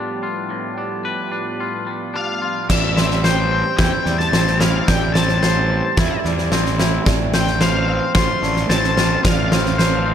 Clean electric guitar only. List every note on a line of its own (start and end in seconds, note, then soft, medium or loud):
0.00 1.05 G3 soft
0.00 0.77 D4 soft
0.00 0.22 F4 soft
0.00 0.23 B4 medium
0.23 1.59 F4 soft
0.51 1.87 A2 soft
0.78 1.30 D4 soft
1.05 2.42 B4 medium
1.32 2.13 D4 soft
1.60 2.41 F4 soft
1.87 2.69 G3 soft
2.14 2.69 D4 medium
2.42 2.69 F4 soft
2.69 4.09 A2 medium
2.97 3.51 C4 medium
3.24 5.42 C5 medium
3.52 4.33 C4 medium
3.78 4.59 E4 medium
4.06 5.42 G3 medium
4.33 5.15 C4 medium
4.61 5.96 E4 medium
4.88 6.29 A2 medium
5.16 5.70 C4 medium
5.42 7.61 C5 medium
5.71 6.52 C4 medium
5.97 6.78 E4 medium
6.26 7.07 G3 medium
6.52 7.34 C4 medium
6.79 7.06 E4 medium
7.07 9.24 A2 medium
7.34 7.88 C4 medium
7.61 9.78 C5 medium
7.88 8.69 C4 medium
8.15 8.96 F4 medium
8.42 10.14 A3 medium
8.69 9.51 C4 medium
8.97 10.14 F4 medium
9.24 10.14 A2 medium
9.52 10.05 C4 medium
9.78 10.14 C5 medium
10.05 10.14 C4 medium